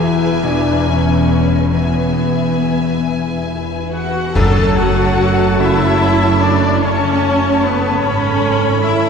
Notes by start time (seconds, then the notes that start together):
Already playing: E1 E2 E3 B4 E5 G#5
0.02 E4 G#4
0.44 B2 D4 E4
0.86 C#4 B4
1.30 G#4
1.73 E3 B3 B4 E5 G#5
2.18 B4
2.62 G#4
3.06 E4
3.50 B4
3.92 F#4 G#4 F#5
4.35 F#1 F#2 A3 A4 C#5 A5, concert bass drum, crash
4.57 C#3
4.77 F#3 F#4 F#5
5.19 A4
5.60 C#3 E4 C#5 E5 C#6
5.80 A5
6.21 A4
6.40 D4 D5
6.81 F#2 A3 C#4 C#5 A5
7.03 C#3
7.63 B3 A4 B4
8.03 G#1 G#2 C#4 A4 C#5 B5
8.63 A4
8.82 E4 E5
9.03 A3